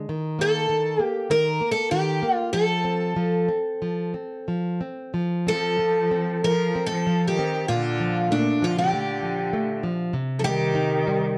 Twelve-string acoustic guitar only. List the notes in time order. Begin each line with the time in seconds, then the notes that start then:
0.41 A4
1.02 G4
1.31 A#4
1.72 A4
1.91 G4
2.35 F4
2.53 A4
5.48 A4
6.44 A#4
6.86 A4
7.27 G4
7.68 F4
8.32 D4
8.64 F4
8.79 G4
10.39 A4
10.44 G4